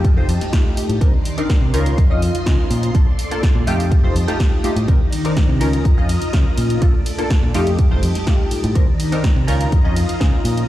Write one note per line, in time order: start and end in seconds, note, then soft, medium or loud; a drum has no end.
0.00 0.18 F2 medium
0.00 0.14 A3 loud
0.00 0.14 D#4 medium
0.00 0.14 F4 medium
0.00 0.14 G4 loud
0.00 1.00 G4 medium
0.00 1.00 D#5 medium
0.00 1.00 A5 medium
0.04 kick loud
0.04 closed hi-hat medium
0.17 0.26 F1 medium
0.17 0.28 A3 medium
0.17 0.28 D#4 medium
0.17 0.28 F4 medium
0.17 0.28 C5 loud
0.28 0.38 F2 medium
0.28 open hi-hat loud
0.41 snare soft
0.41 closed hi-hat medium
0.53 0.98 A3 medium
0.53 0.98 D#4 medium
0.53 0.99 F4 medium
0.53 0.99 G4 medium
0.53 kick loud
0.53 snare loud
0.53 closed hi-hat medium
0.77 muted fingered electric bass stroke soft
0.77 open hi-hat loud
0.89 0.98 A2 medium
0.89 closed hi-hat medium
1.01 1.11 C2 loud
1.01 1.73 D#3 medium
1.01 1.12 C4 medium
1.01 1.13 D4 medium
1.01 1.13 D#4 medium
1.01 1.13 A#4 medium
1.01 1.73 D5 medium
1.01 3.65 C6 medium
1.01 kick loud
1.01 closed hi-hat medium
1.25 open hi-hat loud
1.37 1.71 C4 medium
1.37 1.71 D4 medium
1.37 1.71 D#4 medium
1.37 1.71 A#4 medium
1.37 closed hi-hat soft
1.50 kick loud
1.50 snare loud
1.50 closed hi-hat medium
1.62 1.71 C3 loud
1.73 1.92 C#2 medium
1.73 2.07 C#4 loud
1.73 2.07 D#4 medium
1.73 2.94 F4 medium
1.73 2.08 F4 medium
1.73 2.08 A#4 loud
1.73 2.94 D#5 medium
1.73 open hi-hat loud
1.86 closed hi-hat medium
1.98 2.30 F2 loud
1.98 kick loud
1.98 closed hi-hat medium
2.10 2.21 C#4 medium
2.10 2.21 D#4 medium
2.10 2.21 F4 medium
2.10 2.21 D#5 medium
2.22 open hi-hat loud
2.35 muted fingered electric bass stroke soft
2.35 closed hi-hat medium
2.46 2.56 C#3 medium
2.46 2.92 C#4 medium
2.46 2.92 D#4 medium
2.46 2.92 F4 medium
2.46 2.92 A#4 medium
2.46 kick loud
2.46 snare loud
2.46 open hi-hat medium
2.70 2.89 A#2 medium
2.70 open hi-hat loud
2.83 closed hi-hat medium
2.94 3.04 A#1 loud
2.94 3.06 A#3 medium
2.94 3.06 D4 medium
2.94 3.06 F4 medium
2.94 3.67 A4 medium
2.94 3.06 A4 medium
2.94 3.67 D5 medium
2.94 kick loud
2.94 closed hi-hat medium
3.19 open hi-hat loud
3.31 3.64 A#3 medium
3.31 3.65 D4 medium
3.31 3.65 F4 medium
3.31 3.65 A4 medium
3.31 closed hi-hat medium
3.43 kick loud
3.43 snare loud
3.43 closed hi-hat medium
3.55 3.64 A#2 loud
3.67 4.05 F2 medium
3.67 4.01 A3 loud
3.67 4.01 D#4 medium
3.67 4.01 F4 medium
3.67 4.87 G4 medium
3.67 4.01 G4 loud
3.67 4.87 D#5 medium
3.67 4.87 A5 medium
3.67 open hi-hat loud
3.80 open hi-hat medium
3.91 kick loud
3.91 closed hi-hat medium
4.03 4.13 F1 medium
4.03 4.14 A3 medium
4.03 4.15 D#4 medium
4.03 4.15 F4 medium
4.03 4.15 C5 medium
4.15 4.25 F2 loud
4.15 open hi-hat loud
4.28 4.61 A3 medium
4.28 4.61 D#4 medium
4.28 4.61 F4 medium
4.28 4.61 G4 loud
4.28 snare soft
4.28 closed hi-hat soft
4.40 kick loud
4.40 snare loud
4.40 closed hi-hat medium
4.64 4.75 A3 medium
4.64 4.76 D#4 medium
4.64 4.76 F4 medium
4.64 4.76 G4 loud
4.64 muted fingered electric bass stroke soft
4.64 open hi-hat loud
4.76 4.85 A2 medium
4.76 closed hi-hat medium
4.88 4.98 C2 loud
4.88 5.60 D#3 medium
4.88 5.00 C4 medium
4.88 5.00 D4 medium
4.88 5.00 D#4 medium
4.88 5.00 A#4 medium
4.88 5.60 D5 medium
4.88 6.80 A#5 medium
4.88 kick loud
4.88 closed hi-hat medium
5.13 open hi-hat loud
5.13 ride medium
5.25 5.58 C4 medium
5.25 5.58 D4 medium
5.25 5.58 D#4 medium
5.25 5.58 A#4 medium
5.25 closed hi-hat medium
5.37 kick loud
5.37 snare loud
5.37 closed hi-hat medium
5.49 5.58 C3 loud
5.60 5.79 C#2 medium
5.60 5.94 C#4 loud
5.60 5.94 D#4 medium
5.60 6.81 F4 medium
5.60 5.95 F4 medium
5.60 5.95 A#4 loud
5.60 6.80 D#5 medium
5.60 open hi-hat loud
5.60 ride medium
5.73 closed hi-hat soft
5.85 6.17 F2 medium
5.85 kick loud
5.85 closed hi-hat medium
5.97 6.08 C#4 medium
5.97 6.08 D#4 medium
5.97 6.08 F4 medium
5.97 6.08 D#5 loud
6.09 open hi-hat loud
6.09 ride medium
6.22 muted fingered electric bass stroke soft
6.22 closed hi-hat soft
6.33 6.43 C#3 medium
6.33 6.79 C#4 medium
6.33 6.79 D#4 medium
6.33 6.79 F4 medium
6.33 6.79 A#4 medium
6.33 kick loud
6.33 snare loud
6.33 open hi-hat medium
6.58 6.76 A#2 medium
6.58 open hi-hat loud
6.58 ride medium
6.70 closed hi-hat medium
6.81 6.91 A#1 loud
6.81 6.93 A#3 medium
6.81 6.93 D4 medium
6.81 6.93 F4 medium
6.81 7.54 A4 medium
6.81 6.93 A4 medium
6.81 7.54 D5 medium
6.81 kick loud
6.81 closed hi-hat medium
7.06 open hi-hat loud
7.06 ride medium
7.18 7.52 A#3 medium
7.18 7.52 D4 medium
7.18 7.52 F4 medium
7.18 7.52 A4 medium
7.18 closed hi-hat medium
7.30 kick loud
7.30 snare loud
7.30 closed hi-hat medium
7.43 7.52 A#2 loud
7.54 7.93 F2 medium
7.54 7.88 A3 loud
7.54 7.88 D#4 medium
7.54 7.88 F4 medium
7.54 8.74 G4 medium
7.54 7.88 G4 loud
7.54 8.74 D#5 medium
7.54 8.74 A5 medium
7.54 open hi-hat loud
7.54 ride medium
7.67 closed hi-hat medium
7.79 kick loud
7.79 closed hi-hat medium
7.91 8.00 F1 medium
7.91 8.02 A3 medium
7.91 8.02 D#4 medium
7.91 8.02 F4 medium
7.91 8.02 C5 loud
8.03 8.12 F2 medium
8.03 open hi-hat loud
8.03 ride medium
8.15 snare soft
8.15 closed hi-hat medium
8.27 8.72 A3 medium
8.27 8.73 D#4 medium
8.27 8.73 F4 medium
8.27 8.73 G4 medium
8.27 kick medium
8.27 snare loud
8.27 closed hi-hat medium
8.51 muted fingered electric bass stroke soft
8.51 open hi-hat loud
8.51 ride medium
8.64 8.73 A2 medium
8.64 closed hi-hat medium
8.75 8.85 C2 loud
8.75 9.47 D#3 medium
8.75 8.87 C4 medium
8.75 8.87 D4 medium
8.75 8.87 D#4 medium
8.75 8.87 A#4 medium
8.75 9.47 D5 medium
8.75 10.67 A#5 medium
8.75 kick loud
8.75 closed hi-hat medium
9.00 open hi-hat loud
9.00 ride medium
9.12 9.45 C4 medium
9.12 9.45 D4 medium
9.12 9.45 D#4 medium
9.12 9.46 A#4 medium
9.12 closed hi-hat medium
9.24 kick loud
9.24 snare loud
9.24 closed hi-hat medium
9.36 9.45 C3 loud
9.47 9.67 C#2 medium
9.47 9.81 C#4 loud
9.47 9.82 D#4 medium
9.47 9.82 F4 medium
9.47 10.68 F4 medium
9.47 9.82 A#4 loud
9.47 10.68 D#5 medium
9.47 open hi-hat loud
9.47 ride medium
9.61 closed hi-hat medium
9.72 10.04 F2 loud
9.72 kick loud
9.72 closed hi-hat medium
9.84 9.95 C#4 medium
9.84 9.95 D#4 medium
9.84 9.96 F4 medium
9.84 9.96 D#5 loud
9.96 open hi-hat loud
9.96 ride medium
10.09 muted fingered electric bass stroke soft
10.09 closed hi-hat medium
10.20 10.30 C#3 medium
10.20 10.66 C#4 medium
10.20 10.66 D#4 medium
10.20 10.66 F4 medium
10.20 10.66 A#4 medium
10.20 kick loud
10.20 snare loud
10.20 open hi-hat medium
10.45 10.63 A#2 medium
10.45 open hi-hat loud
10.45 ride medium
10.57 closed hi-hat medium